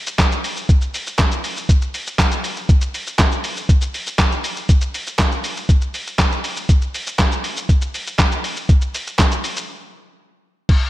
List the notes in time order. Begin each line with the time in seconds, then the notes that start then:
0.07 shaker
0.19 kick, snare, clap, closed hi-hat, shaker
0.32 shaker
0.44 open hi-hat, shaker
0.56 shaker
0.69 kick, closed hi-hat, shaker
0.81 shaker
0.94 open hi-hat, shaker
1.07 shaker
1.19 kick, snare, clap, closed hi-hat, shaker
1.32 shaker
1.44 open hi-hat, shaker
1.57 shaker
1.69 kick, closed hi-hat, shaker
1.81 shaker
1.94 open hi-hat, shaker
2.07 shaker
2.19 kick, snare, clap, closed hi-hat, shaker
2.32 shaker
2.44 open hi-hat, shaker
2.56 shaker
2.69 kick, closed hi-hat, shaker
2.81 shaker
2.94 open hi-hat, shaker
3.07 shaker
3.19 kick, snare, clap, closed hi-hat, shaker
3.32 shaker
3.44 open hi-hat, shaker
3.57 shaker
3.69 kick, closed hi-hat, shaker
3.81 shaker
3.94 open hi-hat, shaker
4.07 shaker
4.19 kick, snare, clap, closed hi-hat, shaker
4.32 shaker
4.44 open hi-hat, shaker
4.56 shaker
4.69 kick, closed hi-hat, shaker
4.81 shaker
4.94 open hi-hat, shaker
5.07 shaker
5.19 kick, snare, clap, closed hi-hat, shaker
5.32 shaker
5.44 open hi-hat, shaker
5.57 shaker
5.69 kick, closed hi-hat, shaker
5.81 shaker
5.94 open hi-hat, shaker
6.07 shaker
6.19 kick, snare, clap, closed hi-hat, shaker
6.32 shaker
6.44 open hi-hat, shaker
6.56 shaker
6.69 kick, closed hi-hat, shaker
6.81 shaker
6.94 open hi-hat, shaker
7.07 shaker
7.19 kick, snare, clap, closed hi-hat, shaker
7.32 shaker
7.44 open hi-hat, shaker
7.57 shaker
7.69 kick, closed hi-hat, shaker
7.81 shaker
7.94 open hi-hat, shaker
8.07 shaker
8.19 kick, snare, clap, closed hi-hat, shaker
8.32 shaker
8.44 open hi-hat, shaker
8.56 shaker
8.69 kick, closed hi-hat, shaker
8.81 shaker
8.94 open hi-hat, shaker
9.07 shaker
9.19 kick, snare, clap, closed hi-hat, shaker
9.32 shaker
9.44 open hi-hat, shaker
9.57 shaker
10.69 kick, crash